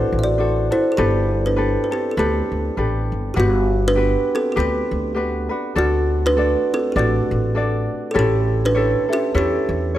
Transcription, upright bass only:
0.12 A1
0.98 G1
2.17 D2
2.52 D2
2.77 A1
3.12 G1
3.37 G1
4.57 D2
4.91 D2
5.76 D2
6.96 A1
7.31 A1
8.16 A1
9.35 E2
9.69 E2

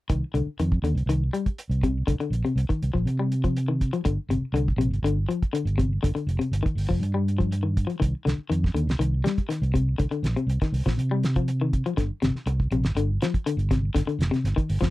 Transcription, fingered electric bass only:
0.10 C2
0.34 C2
0.47 muted fingered electric bass stroke
0.60 F2
0.83 D#2
0.95 C2
1.06 C2
1.70 C2
2.08 C2
2.30 A#1
2.56 C2
2.69 muted fingered electric bass stroke
2.83 C2
2.95 A#1
3.05 C3
4.05 G1
4.29 G1
4.53 C2
4.77 A#1
4.91 G1
5.02 G1
5.65 G1
6.03 G1
6.27 F1
6.51 G1
6.75 G1
6.91 F1
7.00 G2
8.01 C2
8.26 C2
8.38 muted fingered electric bass stroke
8.51 F2
8.74 D#2
8.87 C2
8.99 C2
9.62 C2
10.00 C2
10.23 A#1
10.47 C2
10.72 C2
10.86 A#1
10.97 C3
11.98 G1
12.22 G1
12.35 muted fingered electric bass stroke
12.46 C2
12.71 A#1
12.83 G1
12.95 G1
13.57 G1
13.95 G1
14.19 F1
14.44 G1
14.70 G1
14.82 F1

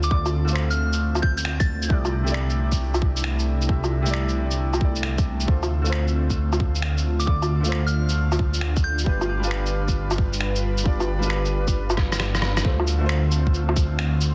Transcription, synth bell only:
0.04 D6
0.11 D6
0.70 F6
1.22 G6
1.37 G6
1.60 A6
7.20 D6
7.27 D6
7.87 F6
8.84 G6

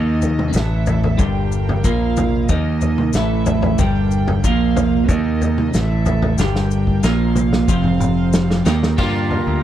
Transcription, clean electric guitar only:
Already playing: D#3 A#3 D#4
0.53 A2 E3 A3
1.18 G2 D3 G3
1.84 A#2 F3 A#3
2.49 D#3 A#3 D#4
3.15 A2 E3 A3
3.80 G2 D3 G3
4.44 A#2 F3 A#3
5.09 D#3 A#3 D#4
5.74 A2 E3 A3
6.39 G2 D3 G3
7.03 A#2 F3 A#3
7.68 F2 C3 F3
8.65 D#3 A#3 D#4
8.96 G2 D3 G3 A#3 D4 G4

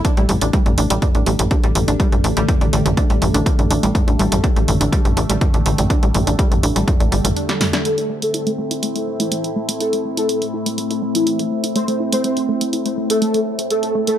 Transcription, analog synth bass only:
0.17 A1
0.29 A1
0.42 A1
0.66 A1
0.78 A1
0.90 A1
1.15 A1
1.27 A1
1.39 A1
1.64 A1
1.75 A1
1.88 A1
2.12 A1
2.24 A1
2.37 A1
2.61 A1
2.73 A1
2.86 A1
3.10 A1
3.22 A1
3.34 A1
3.59 A1
3.71 A1
3.83 A1
4.08 A1
4.20 A1
4.32 A1
4.56 A1
4.68 A1
4.81 A1
5.05 A1
5.17 A1
5.30 A1
5.54 A1
5.66 A1
5.78 A1
6.03 A1
6.15 A1
6.27 A1
6.52 A1
6.63 A1
6.76 A1
7.00 A1
7.12 G1
7.25 A1

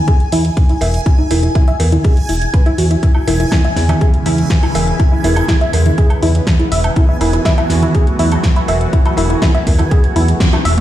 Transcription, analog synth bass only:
0.32 E2
0.81 E1
1.31 E1
1.80 E2
2.29 E1
2.78 E2
3.27 E1
3.77 E2
4.26 E2
4.75 E1
5.24 E1
5.73 E2
6.23 E2
6.72 E1
7.21 E1
7.70 E2
8.19 E2
8.68 E1
9.18 E1
9.67 E2
10.16 E2
10.65 E1

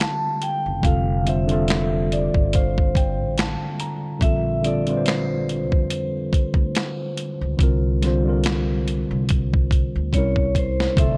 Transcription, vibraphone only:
0.00 A5
0.43 G5
0.84 F5
1.27 E5
2.12 D5
2.54 C5
4.22 E5
4.64 D5
5.06 C5
10.14 C#5
10.58 C5
10.99 E5

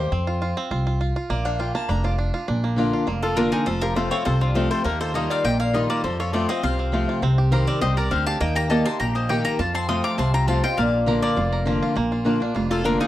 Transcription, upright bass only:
0.12 F2
0.71 C2
1.30 A#1
1.89 F1
2.48 A#1
3.08 F1
3.67 F1
4.26 C2
4.85 D#2
5.44 A#1
6.04 F2
6.63 C2
7.22 C2
7.82 C2
8.11 D2
8.41 D#2
9.00 A#1
9.59 F2
10.18 C2
10.78 A#1
11.37 F1
11.96 A#1
12.55 F1

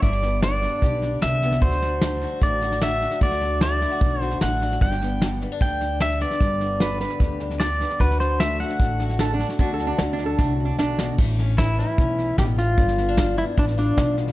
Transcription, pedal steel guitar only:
0.03 D5
0.43 D5
1.23 E5
1.62 C5
2.43 D5
2.83 E5
3.23 D5
3.62 D5
4.22 C5
4.42 F#5
4.82 G5
5.62 G5
6.02 E5
6.22 D5
7.60 D5
8.01 B4
8.20 C5
8.40 E5
8.60 F#5
11.58 E4
11.79 E4
12.39 G4
12.59 F4
13.38 E4
13.59 D4
13.79 D4

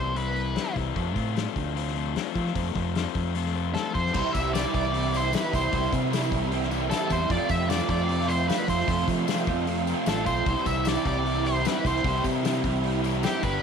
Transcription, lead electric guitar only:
Already playing: C5
0.18 B4
3.74 A4
3.94 C5
4.33 E5
4.54 D5
4.75 D5
5.17 C5
5.35 B4
5.55 C5
6.90 A4
7.12 C5
7.31 D5
7.50 E5
7.70 D5
7.90 D5
8.28 C5
8.48 B4
8.70 C5
10.09 A4
10.26 C5
10.66 E5
10.88 D5
11.07 D5
11.47 C5
11.66 B4
11.87 C5
13.24 G4
13.43 B4

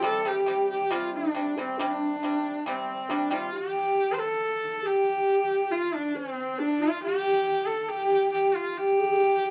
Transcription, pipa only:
0.03 C3 G3
0.25 C3 G3
0.46 C3 G3
0.91 C3 G3
1.35 C3 G3
1.58 C3 G3
1.79 C3 G3
2.23 C3 G3
2.66 C3 G3
3.10 C3 G3
3.31 C3 G3

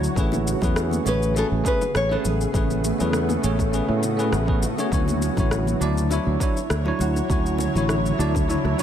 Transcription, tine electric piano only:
Already playing: F#3 D4 E4 C#5
0.16 A3 C#4 G#4 B4
0.61 A3 C#4 G#4 B4
1.05 A3 C#4 G#4 C#5
1.35 A3 C#4 G#4 B4
1.64 A3 C#4 G#4 B4
2.09 A3 C#4 G#4 B4
2.53 A3 C#4 G#4 B4
2.99 A3 C#4 G#4 B4
3.42 A3 C#4 G#4 C#5
3.72 A3 C#4 G#4 B4
4.17 A3 C#4 G#4 B4
4.46 A3 C#4 G#4 B4
4.77 A3 C#4 G#4 C#5
4.91 D3 F#3 E4 C#5
5.37 D3 F#3 E4 C#5
5.80 F#3 D4 E4 D5
6.10 F#3 D4 E4 C#5
6.40 F#3 D4 E4 C#5
6.85 F#3 D4 E4 C#5
7.29 D3 F#3 E4 C#5
7.75 D3 F#3 E4 C#5
8.18 F#3 D4 E4 D5
8.48 F#3 D4 E4 C#5
8.77 F#3 D4 E4

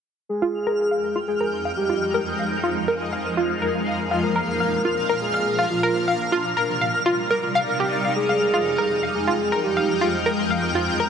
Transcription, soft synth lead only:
0.29 G#4
1.28 G#4
1.77 G4
4.23 A#4
5.21 G#4
5.70 F4
8.16 G#4
9.15 G#4
9.64 G4

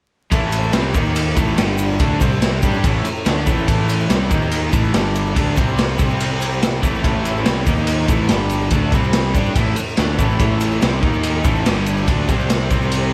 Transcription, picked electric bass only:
0.32 A1
0.73 C2
0.95 D#2
1.36 A1
1.58 G1
2.00 D2
2.21 C2
2.63 G2
2.84 A1
3.05 muted picked electric bass stroke
3.26 D2
3.47 A1
3.68 A1
4.10 C2
4.31 D#2
4.73 A1
4.94 G1
5.36 D2
5.57 C2
5.99 C2
6.83 A1
7.04 A1
7.47 C2
7.67 D#2
8.09 A1
8.30 G1
8.72 D2
8.92 C2
9.35 G2
9.56 A1
9.77 muted picked electric bass stroke
9.99 D2
10.19 A1
10.39 A1
10.82 C2
11.03 D#2
11.45 A1
11.67 G1
12.08 D2
12.29 C2
12.71 C2

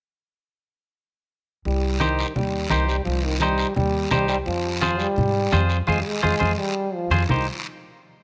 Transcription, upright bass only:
1.65 C2
2.36 D#2
2.71 C2
3.06 C2
3.77 D#2
4.12 C2
4.47 F2
5.18 G#2
5.53 F2
5.88 F2
6.24 F2
6.42 F2
7.10 F2
7.29 C2

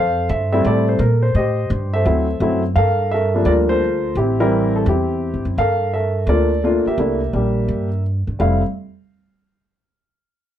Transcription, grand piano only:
Already playing: A4 C5 F5
0.30 E5
0.52 G3 A3 C4 E4 E5
0.66 A4 D5
0.89 C5
1.00 A#4
1.23 C5
1.36 G4 C5 D#5
1.94 A4 C5 E5
2.05 F#3 A3 C4 E4
2.41 F#3 A3 C4 E4
2.76 A4 A#4 F5
3.12 A4 A#4 E5
3.34 F3 G3 A#3 D4
3.46 F4 A#4 D5
3.69 F4 A4 C5
4.17 C4 E4 G4
4.40 E3 G3 C4 E4 G4 A#4
4.76 A4
4.89 C4 E4 G4
5.58 A4 A#4 F5
5.94 A4 A#4 E5
6.28 A3 A#3 D4 F4 A#4 D5
6.64 A3 A#3 D4 F4
6.87 G4 A#4 E5
6.99 A3 A#3 D4 E4
7.33 G3 A#3 D4 G4
8.39 G3 A3 C4 E4 F5

